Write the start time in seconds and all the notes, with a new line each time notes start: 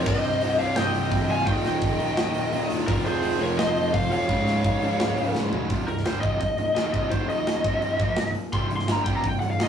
Already playing: C4
0.02 C1 C2 A#4, crash
0.06 C2 G2 C3 G3 D#5, kick
0.11 C5
0.24 C1, open hi-hat
0.41 C1 C2 G2 C3, open hi-hat
0.58 C1 C2 G2 C3 F5, open hi-hat
0.64 C#5
0.76 C1 C2 G2 C3 D#5 G5, snare, open hi-hat
0.94 C1, open hi-hat
1.10 C1 C2 G2 C3, kick, open hi-hat
1.28 C1 C2 G2 C3 G#5, open hi-hat
1.32 F5
1.46 D#1 D#2 A#2 D#3 A#3 F4 G5, kick, open hi-hat
1.50 D#5
1.64 D#1, snare, open hi-hat
1.81 D#1 D#2 A#2 D#3, kick, open hi-hat
1.99 D#1 D#2 A#2 D#3, open hi-hat
2.17 D#1 D#2 A#2 D#3, snare, open hi-hat
2.34 D#1, open hi-hat
2.52 D#1 D#2 A#2 D#3, open hi-hat
2.69 E1 D#2 A#2 D#3, open hi-hat
2.86 F1 F2 C3 F3 C4 F4 A#4 G5, kick, open hi-hat
3.05 F1 G#4 C5, open hi-hat
3.22 F1 F2 C3 F3, open hi-hat
3.39 F1 F2 C3 F3 A#4 C#5, open hi-hat
3.56 F1 F2 C3 F3 C5 D#5, snare, open hi-hat
3.77 F1, open hi-hat
3.92 F1 F2 C3 F3 C5 F5, kick, open hi-hat
4.10 F1 F2 C3 F3 C#5 F5, open hi-hat
4.27 C#1 C#2 G#2 C#3 G#3 D#4, kick, open hi-hat
4.47 C#1, snare, open hi-hat
4.63 C#1 C#2 G#2 C#3, kick, open hi-hat
4.81 C#1 C#2 G#2 C#3, open hi-hat
4.99 C#1 C#2 G#2 C#3, snare, open hi-hat
5.18 C#1, open hi-hat
5.34 C#1 C#2 G#2 C#3, snare
5.50 B1 C#2 G#2 C#3, floor tom
5.70 C1 C2 G2 C3, kick, open hi-hat
5.88 C1 C2 G2 A#4, open hi-hat
5.97 snare
6.04 G1 G2 D3 G3 C5, snare, open hi-hat
6.21 C1 C2 G2 C3 D#5, kick, open hi-hat
6.39 C1 C2 G2, kick, open hi-hat
6.57 C1 C2 G2, open hi-hat
6.75 D#1 D#2 A#2 D#3 D#5, snare, open hi-hat
6.92 C1 C2 G2 C3 D#5, kick, open hi-hat
7.11 D#1 D#2 A#2 D#3 C5, kick, open hi-hat
7.29 D#5, open hi-hat
7.47 snare, open hi-hat
7.64 C1 C2 G2 C3, kick, open hi-hat
7.82 open hi-hat
7.99 A#1 A#2 F3 A#3, kick, open hi-hat
8.16 C1 C2 G2, snare, open hi-hat
8.26 snare
8.35 open hi-hat
8.52 C1 C2 G2 C3 C6, kick, open hi-hat
8.70 C1 C2 G2, open hi-hat
8.77 C6, snare
8.86 G1 G2, snare, open hi-hat
8.90 D3 G3 A#5
9.04 C1 C2 G2 G5, kick, open hi-hat
9.08 C3
9.15 A#5
9.24 C1 C2 G2, kick, open hi-hat
9.28 G5
9.40 C1 C2 G2 F#5, open hi-hat
9.51 F5
9.58 D#1 D#2 A#2 D#3, snare, open hi-hat
9.63 D#5